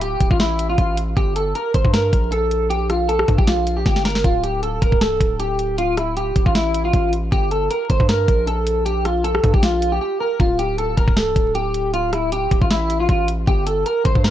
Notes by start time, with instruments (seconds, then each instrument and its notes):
Already playing: 808-style bass D1
0.01 clean electric guitar G4, closed hi-hat
0.20 808-style bass D1, kick, closed hi-hat
0.31 808-style bass A1, clean electric guitar F4, kick
0.40 clean electric guitar E4, snare, closed hi-hat
0.59 closed hi-hat
0.70 clean electric guitar F4
0.78 808-style bass A1, clean electric guitar F4, kick, closed hi-hat
0.97 closed hi-hat
1.17 808-style bass G1, clean electric guitar G4, kick, closed hi-hat
1.36 clean electric guitar A4, closed hi-hat
1.55 clean electric guitar A#4, closed hi-hat
1.74 808-style bass G1, clean electric guitar C5, kick, closed hi-hat
1.85 808-style bass G2, kick
1.93 clean electric guitar A#4, snare, closed hi-hat
2.13 808-style bass A#1, kick, closed hi-hat
2.32 clean electric guitar A4, closed hi-hat
2.51 closed hi-hat
2.70 clean electric guitar G4, closed hi-hat
2.90 clean electric guitar F4, cross-stick, closed hi-hat
3.09 clean electric guitar A4, closed hi-hat
3.19 cross-stick
3.28 808-style bass G2, kick, closed hi-hat
3.38 808-style bass A#1, clean electric guitar G4, kick
3.47 clean electric guitar F4, snare, closed hi-hat
3.67 closed hi-hat
3.77 clean electric guitar G4
3.86 808-style bass G1, clean electric guitar G4, kick, snare, closed hi-hat
3.96 snare
4.05 clean electric guitar A#4, snare, closed hi-hat, open hi-hat
4.10 closed hi-hat
4.15 snare, closed hi-hat
4.20 closed hi-hat
4.24 808-style bass D1, clean electric guitar F4, kick, closed hi-hat
4.44 clean electric guitar G4, closed hi-hat
4.63 clean electric guitar A4, closed hi-hat
4.82 808-style bass D1, clean electric guitar A#4, kick, closed hi-hat
4.92 808-style bass C1, kick
5.01 clean electric guitar A4, snare, closed hi-hat
5.21 808-style bass D1, kick, closed hi-hat
5.40 clean electric guitar G4, closed hi-hat
5.59 closed hi-hat
5.78 clean electric guitar F4, closed hi-hat
5.97 clean electric guitar E4, cross-stick, closed hi-hat
6.17 clean electric guitar G4, closed hi-hat
6.36 808-style bass D1, kick, closed hi-hat
6.46 808-style bass A1, clean electric guitar F4, kick
6.55 clean electric guitar E4, snare, closed hi-hat
6.74 closed hi-hat
6.85 clean electric guitar F4
6.93 808-style bass A1, clean electric guitar F4, kick, closed hi-hat
7.13 closed hi-hat
7.32 808-style bass G1, clean electric guitar G4, kick, closed hi-hat
7.51 clean electric guitar A4, closed hi-hat
7.71 clean electric guitar A#4, closed hi-hat
7.90 808-style bass G1, clean electric guitar C5, kick, closed hi-hat
8.00 808-style bass G2, kick
8.09 clean electric guitar A#4, snare, closed hi-hat
8.28 808-style bass A#1, kick, closed hi-hat
8.47 clean electric guitar A4, closed hi-hat
8.67 closed hi-hat
8.86 clean electric guitar G4, closed hi-hat
9.05 clean electric guitar F4, cross-stick, closed hi-hat
9.24 clean electric guitar A4, closed hi-hat
9.35 cross-stick
9.44 808-style bass G2, kick, closed hi-hat
9.54 808-style bass A#1, clean electric guitar G4, kick
9.63 clean electric guitar F4, snare, closed hi-hat
9.82 closed hi-hat
9.92 clean electric guitar G4
10.01 clean electric guitar G4
10.20 clean electric guitar A#4
10.40 808-style bass D1, clean electric guitar F4, kick, closed hi-hat
10.59 clean electric guitar G4, closed hi-hat
10.78 clean electric guitar A4, closed hi-hat
10.97 808-style bass D1, clean electric guitar A#4, kick, closed hi-hat
11.08 808-style bass C1, kick
11.16 clean electric guitar A4, snare, closed hi-hat
11.36 808-style bass D1, kick, closed hi-hat
11.55 clean electric guitar G4, closed hi-hat
11.74 closed hi-hat
11.94 clean electric guitar F4, closed hi-hat
12.13 clean electric guitar E4, cross-stick, closed hi-hat
12.32 clean electric guitar G4, closed hi-hat
12.51 808-style bass D1, kick, closed hi-hat
12.62 808-style bass A1, clean electric guitar F4, kick
12.71 clean electric guitar E4, snare, closed hi-hat
12.90 closed hi-hat
13.00 clean electric guitar F4
13.09 808-style bass A1, clean electric guitar F4, kick, closed hi-hat
13.28 closed hi-hat
13.47 808-style bass G1, clean electric guitar G4, kick, closed hi-hat
13.67 clean electric guitar A4, closed hi-hat
13.86 clean electric guitar A#4, closed hi-hat
14.05 808-style bass G1, clean electric guitar C5, kick, closed hi-hat
14.15 808-style bass G2, kick
14.24 clean electric guitar A#4, snare, closed hi-hat